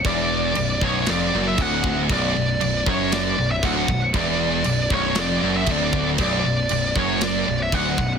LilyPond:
<<
  \new Staff \with { instrumentName = "Lead electric guitar" } { \time 4/4 \key b \minor \tempo 4 = 117 d''4. cis''8 d''8. e''16 fis''8. r16 | d''4. cis''8 d''8. e''16 fis''8. r16 | d''4. cis''8 d''8. e''16 d''8. r16 | d''4. cis''8 d''8. e''16 fis''8. r16 | }
  \new Staff \with { instrumentName = "Distorted electric guitar" } { \clef bass \time 4/4 \key b \minor e,4 b,,8 b,,8 eis,8 fis,8 d,4 | b,,8 b,,8 b,,8 fis,4 b,,8 d,8 b,,8 | e,4 b,,8 b,,8 eis,8 fis,8 d,4 | b,,8 b,,8 b,,8 fis,4 b,,8 d,8 b,,8 | }
  \new Staff \with { instrumentName = "Distorted electric guitar" } { \clef bass \time 4/4 \key b \minor e,4 b,,8 b,,8 eis,8 fis,8 d,4 | b,,8 b,,8 b,,8 fis,4 b,,8 d,8 b,,8 | e,4 b,,8 b,,8 eis,8 fis,8 d,4 | b,,8 b,,8 b,,8 fis,4 b,,8 d,8 b,,8 | }
  \new Staff \with { instrumentName = "Picked electric bass" } { \clef bass \time 4/4 \key b \minor e,,4 b,,,8 b,,,8 eis,,8 fis,,8 d,,4 | b,,,8 b,,,8 b,,,8 fis,,4 b,,,8 d,,8 b,,,8 | e,,4 b,,,8 b,,,8 eis,,8 fis,,8 d,,4 | b,,,8 b,,,8 b,,,8 fis,,4 b,,,8 d,,8 b,,,8 | }
  \new DrumStaff \with { instrumentName = "Drums" } \drummode { \time 4/4 <cymc bd>4 cymc8 bd8 <cymc sn>4 <cymc bd>8 bd8 | <cymc bd>4 cymc8 bd8 <cymc sn>4 <cymc bd>8 bd8 | <cymc bd>4 cymc8 bd8 <cymc sn>4 <cymc bd>8 bd8 | <cymc bd>4 cymc8 bd8 <cymc sn>4 <cymc bd>8 bd8 | }
>>